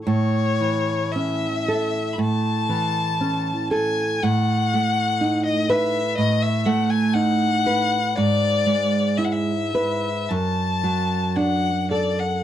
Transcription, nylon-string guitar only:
\new Staff \with { instrumentName = "Nylon-string guitar" } { \time 4/4 \key a \major \tempo 4 = 58 a,8 e8 cis'8 a'8 a,8 e8 cis'8 a'8 | a,8 a8 dis'8 b'8 a,8 a8 dis'8 b'8 | gis,8 gis8 e'8 b'8 fis,8 fis8 d'8 a'8 | }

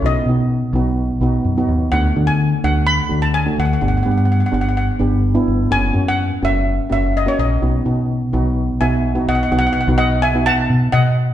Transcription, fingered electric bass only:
\new Staff \with { instrumentName = "Fingered electric bass" } { \clef bass \time 4/4 \key b \mixolydian \tempo 4 = 127 b,,8 b,4 b,,4 b,,8 fis,8 dis,8 | d,8 d4 d,4 d,4 d,8 | g,,8 g,4 g,,4 g,,4 g,,8 | fis,,8 fis,4 fis,,4 fis,,4 ais,,8 |
b,,8 b,4 b,,4 b,,4 b,,8 | b,,8 r16 b,,4.~ b,,16 b,8 b,4 | }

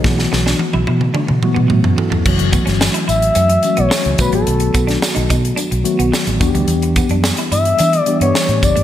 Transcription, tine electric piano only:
<<
  \new Staff \with { instrumentName = "Tine electric piano" } { \time 4/4 \key b \minor \tempo 4 = 108 <dis' gis'>16 r2. <cis' fis'>16 <e' a'>16 <cis' fis'>16~ | <cis' fis'>16 r2. r8. | r1 | r1 | }
  \new Staff \with { instrumentName = "Tine electric piano" } { \time 4/4 \key b \minor <e fis a b fis'>4. r4 <e fis a b fis'>4 r8 | <e fis a cis' fis'>4. r4 <e fis g a cis' fis'>4 <dis fis a b fis'>8~ | <dis fis a b fis'>4 r4. <dis fis a b fis'>4 <e g b d' fis' g'>8~ | <e g b d' fis' g'>4 r4. <e g b d' g'>4 r8 | }
>>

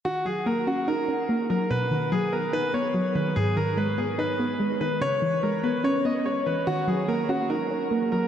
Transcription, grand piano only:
\new Staff \with { instrumentName = "Grand piano" } { \time 4/4 \key ees \phrygian \tempo 4 = 145 ges'8 aes'8 bes'8 ges'8 bes'4. bes'8 | b'4 aes'8 bes'8 b'8 des''4 b'8 | aes'8 bes'8 ces''8 aes'8 ces''4. ces''8 | des''4 bes'8 ces''8 des''8 ees''8 des''8 ces''8 |
ges'8 aes'8 bes'8 ges'8 bes'4. bes'8 | }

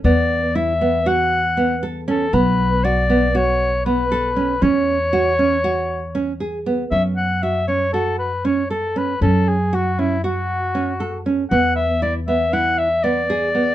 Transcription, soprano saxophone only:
\new Staff \with { instrumentName = "Soprano saxophone" } { \time 9/8 \key fis \minor \tempo 4. = 78 d''4 e''4 fis''4. r8 a'8 | b'4 d''4 cis''4 b'4. | cis''2.~ cis''8 r4 | e''8 fis''8 e''8 cis''8 a'8 b'8 cis''8 a'8 b'8 |
a'8 gis'8 fis'8 e'8 fis'2 r8 | fis''8 e''8 d''8 e''8 fis''8 e''8 d''4. | }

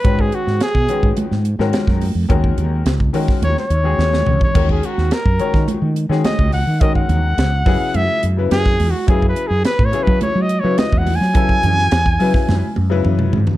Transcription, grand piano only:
\new Staff \with { instrumentName = "Grand piano" } { \time 4/4 \key fis \mixolydian \tempo 4 = 106 <dis gis cis' fis' b'>4 r8 <dis gis cis' fis' b'>8. r8 <dis gis cis' fis' ais'>8. r8 | <dis gis cis' fis' ais'>4 r8 <dis gis cis' fis' ais'>8. r8 <dis gis cis' fis' gis'>8. r8 | <dis gis cis' fis' ais'>4 r8 <dis gis cis' fis' cis''>8. r8 <dis gis cis' fis' gis'>8. r8 | <dis gis cis' fis' ais'>4 r8 <cis fis b e' gis'>4 r16 <cis fis b e' b'>8. r8 |
<cis fis b e' gis'>4 r8 <cis fis b e' gis'>8. r8 <cis fis b e' b'>8. r8 | <cis fis b e' a'>4 r8 <cis fis b e' b'>8. r8 <cis fis b e' b'>8. r8 | }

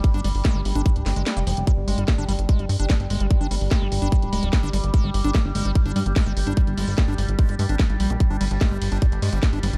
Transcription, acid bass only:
\new Staff \with { instrumentName = "Acid bass" } { \clef bass \time 4/4 \key c \minor \tempo 4 = 147 r16 d'16 g16 r16 aes16 g16 r16 d'16 g16 r16 aes16 aes16 r16 bes16 f16 r16 | g16 r16 aes16 g16 r16 d'16 g16 r16 aes16 g16 r16 d'16 g16 r16 aes16 g16 | r16 d'16 g16 r16 aes16 g16 r16 d'16 g16 r16 aes16 g16 r16 d'16 g16 r16 | aes16 g16 r16 d'16 g16 r16 aes16 g16 r16 d'16 g16 r16 aes16 g16 r16 d'16 |
g16 r16 aes16 g16 r16 d'16 g16 r16 aes16 g16 aes16 d'16 g16 r16 g16 g'16 | r16 d'16 g16 r16 aes16 g16 r16 d'16 g16 r16 aes16 g16 r16 d'16 g16 r16 | }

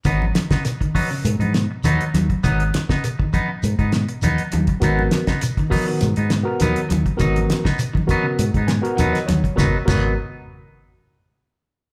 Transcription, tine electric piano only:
\new Staff \with { instrumentName = "Tine electric piano" } { \time 4/4 \key gis \minor \tempo 4 = 101 << { r1 | r1 | r1 | r2 r8 gis''8 fis''16 dis''16 cis''8 |
r1 | } \\ { r1 | r1 | <b fis' ais'>8. r8. <b fis' ais'>8 r8. <b fis' ais'>8 r8. | <b fis' ais'>8. r8. <b fis' ais'>8 r8. <b fis' ais'>8 r8. |
<b fis' ais'>16 r16 <b fis' ais'>8 r2. | } >> }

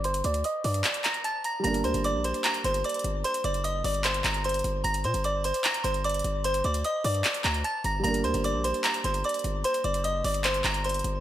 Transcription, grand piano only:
\new Staff \with { instrumentName = "Grand piano" } { \time 4/4 \key g \minor \tempo 4 = 150 r1 | <g bes d' bes'>1 | r1 | r1 |
r1 | <g bes d' bes'>1~ | <g bes d' bes'>1 | }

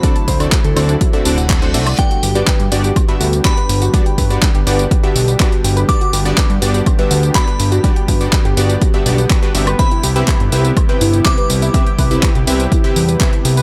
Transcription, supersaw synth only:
\new Staff \with { instrumentName = "Supersaw synth" } { \time 4/4 \key g \major \tempo 4 = 123 <d c' d' fis' a' d''>16 r8 <d c' d' fis' a' d''>16 r8 <d c' d' fis' a' d''>16 r8 <d c' d' fis' a' e''>16 <d c' d' fis' a' d''>16 r8 <d c' d' fis' a' c''>16 <c' d' fis' a' e''>16 r16 | <g, b d' fis' g' d''>16 r8 <g, b d' fis' g' d''>16 r8 <g, b d' fis' g' d''>16 r8 <g, b d' fis' g' e''>16 r8 <g, b d' fis' g' d''>16 r8. | <g, b d' fis' g' d''>16 r8 <g, b d' fis' g' d''>16 r8 <g, b d' fis' g' d''>16 r8 <g, b d' fis' g' e''>16 r8 <g, b d' fis' g' d''>16 r8. | <g, b d' fis' g' d''>16 r8 <g, b d' fis' g' d''>16 r8 <g, b d' fis' g' d''>16 r8 <g, b d' fis' g' e''>16 r8 <g, b d' fis' g' d''>16 r8. |
<g, b d' fis' g' d''>16 r8 <g, b d' fis' g' d''>16 r8 <g, b d' fis' g' d''>16 r8 <g, b d' fis' g' e''>16 <g, b d' fis' g' d''>16 r8 <g, b d' fis' g' b'>16 <c b d' fis' g' e''>16 r16 | <c c' e' g' b' e''>16 r8 <c c' e' g' b' e''>16 r8 <c c' e' g' b' e''>16 r8 <c c' e' g' b' g''>16 r8 <c c' e' g' b' e''>16 r8. | <c c' e' g' b' e''>16 r8 <c c' e' g' b' e''>16 r8 <c c' e' g' b' e''>16 r8 <c c' e' g' b' g''>16 r8 <c c' e' g' b' e''>16 r8. | }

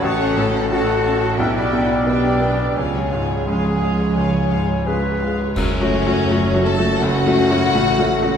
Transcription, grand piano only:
\new Staff \with { instrumentName = "Grand piano" } { \time 4/4 \key fis \minor \tempo 4 = 86 a,,8 a,8 <cis' fis' a'>8 cis'8 b,,8 b,8 <b d' g'>8 b8 | cis,8 gis,8 <gis cis' gis'>8 gis8 cis,8 gis,8 <gis cis' gis'>8 gis8 | \tuplet 3/2 { fis,8 <a cis' fis'>8 <a cis' fis'>8 <a cis' fis'>8 <a cis' fis'>8 <a cis' fis'>8 cis,8 <a cis' fis'>8 <a cis' fis'>8 <a cis' fis'>8 <a cis' fis'>8 <a cis' fis'>8 } | }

